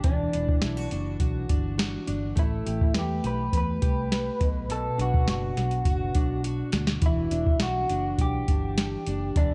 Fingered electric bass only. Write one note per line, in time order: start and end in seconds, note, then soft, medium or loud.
0.04 0.28 E1 medium
0.35 0.58 E1 medium
0.63 0.86 B1 medium
0.92 1.15 F#1 medium
1.20 1.44 B1 medium
1.50 1.96 G1 medium
2.08 2.32 G1 medium
2.38 2.61 A1 loud
2.67 2.90 A1 medium
2.96 3.19 E2 medium
3.24 3.48 B1 medium
3.53 3.76 E2 medium
3.83 4.29 C2 medium
4.41 4.88 B1 medium
4.99 5.22 B1 medium
5.27 5.51 F#1 medium
5.57 5.81 B1 medium
5.85 6.09 F#1 medium
6.15 6.62 B1 medium
6.73 6.97 D2 medium
7.03 7.26 E1 medium
7.31 7.55 E1 medium
7.60 7.84 B1 medium
7.90 8.13 F#1 medium
8.19 8.42 B1 medium
8.49 8.95 G1 medium
9.07 9.30 F#1 medium
9.36 9.54 E1 medium